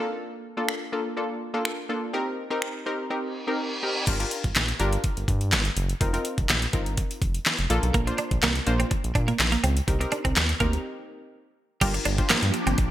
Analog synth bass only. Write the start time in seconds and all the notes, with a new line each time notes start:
4.07 G1
4.44 G1
4.56 A#1
4.80 G1
5.17 G1
5.28 G2
5.52 G1
5.77 F#1
6.01 F1
6.38 F1
6.49 A#1
6.73 G1
7.22 F1
7.59 F1
7.70 A#1
7.83 B1
7.94 A#1
8.31 A#1
8.43 C2
8.67 A#1
9.04 A#1
9.15 A#2
9.39 A#1
9.64 C#2
9.88 C2
10.25 C2
10.36 D#2
10.60 D2
11.81 G1
12.05 G1
12.30 G2
12.43 G2
12.67 G1
12.78 A#1